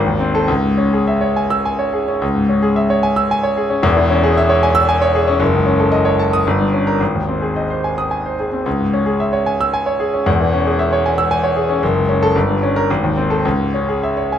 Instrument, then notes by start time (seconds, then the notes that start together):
grand piano
Already playing: G#1
0.06 D#2
0.20 C4
0.35 A4
0.48 C#2
0.63 G#2
0.78 C#4
0.93 G#4
1.08 E5
1.21 C#5
1.36 G#5
1.50 E6
1.65 G#5
1.79 C#5
1.94 G#4
2.08 C#4
2.22 C#2
2.35 G#2
2.49 C#4
2.62 G#4
2.76 E5
2.90 C#5
3.03 G#5
3.16 E6
3.31 G#5
3.43 C#5
3.57 G#4
3.70 C#4
3.82 E1 E2
3.97 E3
4.10 C#4
4.23 G#4
4.37 E5
4.50 C#5
4.63 G#5
4.75 E6
4.89 G#5
5.02 C#5
5.15 G#4
5.28 C#4
5.40 F#1
5.53 C#2
5.66 C#4
5.80 A4
5.92 D#5
6.05 C#5
6.19 A5
6.33 D#6
6.47 G1
6.60 G2
6.73 C#4
6.87 A#4
7.00 G#1
7.15 D#2
7.29 C4
7.42 G#4
7.56 D#5
7.70 C5
7.84 G#5
7.98 D#6
8.11 G#5
8.26 C5
8.40 G#4
8.52 C4
8.66 C#2
8.80 G#2
8.93 C#4
9.06 G#4
9.20 E5
9.33 C#5
9.46 G#5
9.61 E6
9.74 G#5
9.86 C#5
10.00 G#4
10.14 C#4
10.26 E1 E2
10.40 E3
10.53 C#4
10.66 G#4
10.79 E5
10.93 C#5
11.06 G#5
11.18 E6
11.31 G#5
11.44 C#5
11.56 G#4
11.69 C#4
11.83 F#1
11.96 C#2
12.09 C#4
12.23 A4
12.35 G1
12.50 G2
12.63 C#4
12.76 A#4
12.90 G#1
13.04 D#2
13.17 C4
13.30 A4
13.45 C#2
13.60 G#2
13.74 C#4
13.88 G#4
14.03 E5
14.17 C#5
14.32 G#5